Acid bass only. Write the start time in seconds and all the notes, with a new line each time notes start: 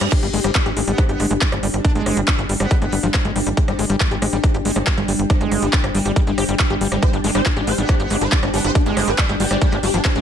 0.01 G3
0.12 G3
0.23 G3
0.34 G#3
0.44 G3
0.55 B3
0.66 G4
0.77 G#3
0.87 G3
0.98 D4
1.09 G4
1.20 G#3
1.31 G#3
1.41 B3
1.52 G3
1.63 G3
1.85 D4
1.95 G#3
2.17 G3
2.28 B3
2.49 G3
2.60 G3
2.71 G3
2.82 G#3
2.92 G3
3.03 F3
3.14 B3
3.25 G#3
3.36 G3
3.47 G3
3.57 G3
3.68 G3
3.79 G#3
3.90 G3
4.00 B3
4.11 G4
4.22 G#3
4.33 G3
4.44 D4
4.54 G4
4.65 G#3
4.76 G#3
4.87 B3
4.98 G3
5.08 G3
5.30 D4
5.41 G#3
5.62 G3
5.73 B3
5.95 G3
6.05 G3
6.16 G3
6.27 G#3
6.38 G4
6.49 G3
6.70 G4
6.81 G3
6.92 G3
7.03 G3
7.13 G3
7.24 G#3
7.35 G3
7.46 B3
7.57 G4
7.67 G#3
7.78 G3
7.89 D4
8.00 G4
8.11 G#3
8.32 B3
8.43 G3
8.54 G3
8.75 D4
8.86 G#3
9.08 G3
9.18 B3
9.29 G#3
9.40 G3
9.51 G3
9.62 G3
9.72 G#3
9.83 G3
9.94 F3
10.05 B3
10.16 G#3